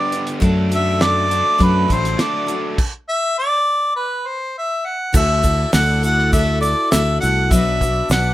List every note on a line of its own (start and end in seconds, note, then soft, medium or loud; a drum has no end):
0.00 0.39 G2 medium
0.00 0.39 D3 medium
0.00 0.12 G3 medium
0.00 0.40 B3 medium
0.00 0.13 D4 medium
0.00 0.13 G4 medium
0.00 0.11 B4 medium
0.00 0.28 D5 medium
0.12 0.40 D4 soft
0.12 0.41 G4 soft
0.12 0.41 B4 medium
0.12 closed hi-hat medium
0.27 closed hi-hat medium
0.40 1.41 F#2 medium
0.40 0.70 F#3 medium
0.40 0.71 A3 medium
0.40 0.70 D4 medium
0.40 0.70 F#4 medium
0.40 0.68 A4 medium
0.40 kick loud
0.40 closed hi-hat medium
0.69 0.99 D4 soft
0.69 1.00 F#4 soft
0.69 1.00 A4 soft
0.69 closed hi-hat medium
0.75 1.04 E5 loud
1.00 1.30 A3 medium
1.00 1.30 D4 medium
1.00 1.29 F#4 medium
1.00 1.27 A4 medium
1.00 1.64 D5 loud
1.00 snare loud
1.00 closed hi-hat medium
1.28 2.16 F#3 medium
1.28 2.17 A3 medium
1.28 1.58 D4 soft
1.28 1.58 F#4 soft
1.28 1.59 A4 medium
1.28 closed hi-hat medium
1.58 1.85 F#2 medium
1.58 1.89 F#3 medium
1.58 1.89 A3 medium
1.58 1.89 D4 medium
1.58 1.89 F#4 medium
1.58 1.87 A4 medium
1.58 kick medium
1.58 closed hi-hat medium
1.63 1.91 B4 medium
1.88 2.15 A1 medium
1.88 2.18 D4 soft
1.88 2.19 F#4 medium
1.88 2.18 A4 medium
1.88 kick medium
1.88 closed hi-hat medium
1.92 2.24 C5 medium
2.05 snare soft
2.05 closed hi-hat medium
2.17 2.75 F#3 medium
2.17 2.48 A3 medium
2.17 2.49 D4 medium
2.17 2.48 F#4 medium
2.17 snare loud
2.17 closed hi-hat medium
2.21 2.45 A4 medium
2.21 2.65 D5 medium
2.47 2.79 D4 soft
2.47 2.78 F#4 soft
2.47 2.77 A4 medium
2.47 closed hi-hat medium
2.78 kick loud
2.78 crash loud
3.09 3.36 E5 loud
3.38 3.93 D5 loud
3.96 4.29 B4 loud
4.28 4.56 C5 medium
4.58 4.87 E5 medium
4.85 5.15 F#5 medium
5.12 5.64 D2 loud
5.12 5.43 D3 medium
5.12 5.44 A3 medium
5.12 7.48 E4 medium
5.12 5.44 E4 medium
5.12 7.48 F#4 medium
5.12 5.43 F#4 medium
5.12 7.48 A4 medium
5.12 5.42 A4 medium
5.12 7.48 D5 medium
5.12 kick loud
5.12 crash loud
5.12 shaker medium
5.16 5.71 E5 loud
5.43 5.72 E4 soft
5.43 5.72 F#4 soft
5.43 5.73 A4 medium
5.43 kick medium
5.43 open hi-hat medium
5.43 shaker medium
5.73 6.73 D2 medium
5.73 6.03 A3 medium
5.73 6.03 E4 medium
5.73 6.02 F#4 medium
5.73 6.01 A4 medium
5.73 6.01 F#5 medium
5.73 snare loud
5.73 open hi-hat medium
5.73 shaker medium
6.02 6.32 E4 soft
6.02 6.33 F#4 soft
6.02 6.32 A4 medium
6.02 6.32 F#5 medium
6.02 open hi-hat medium
6.02 shaker medium
6.19 snare soft
6.33 6.62 D3 medium
6.33 6.63 A3 medium
6.33 6.62 E4 medium
6.33 6.61 F#4 medium
6.33 6.59 A4 medium
6.33 6.61 E5 loud
6.33 kick loud
6.33 open hi-hat medium
6.33 shaker medium
6.61 6.91 E4 soft
6.61 6.92 F#4 medium
6.61 6.91 A4 medium
6.61 6.89 D5 loud
6.61 open hi-hat medium
6.61 shaker medium
6.91 7.18 D2 medium
6.91 7.21 A3 medium
6.91 7.22 E4 medium
6.91 7.21 F#4 medium
6.91 7.19 A4 medium
6.91 7.19 E5 medium
6.91 snare loud
6.91 open hi-hat medium
6.91 shaker loud
7.21 7.51 C2 medium
7.21 7.52 E4 soft
7.21 7.52 F#4 medium
7.21 7.51 A4 medium
7.21 7.54 F#5 loud
7.21 open hi-hat medium
7.21 shaker medium
7.51 8.01 B1 loud
7.51 7.81 B2 medium
7.51 7.81 F#3 medium
7.51 7.82 B3 medium
7.51 8.34 D4 medium
7.51 7.82 D4 medium
7.51 8.34 F#4 medium
7.51 7.81 F#4 medium
7.51 8.34 B4 medium
7.51 7.80 B4 medium
7.51 8.34 D5 medium
7.51 8.11 E5 loud
7.51 kick loud
7.51 open hi-hat medium
7.51 shaker medium
7.81 8.09 B3 soft
7.81 8.11 D4 soft
7.81 8.11 F#4 soft
7.81 8.11 B4 soft
7.81 kick medium
7.81 open hi-hat medium
7.81 shaker medium
8.10 8.34 B1 medium
8.10 8.34 B3 medium
8.10 8.34 D4 medium
8.10 8.34 F#4 medium
8.10 8.34 B4 medium
8.10 8.34 F#5 loud
8.10 snare loud
8.10 open hi-hat medium
8.10 shaker medium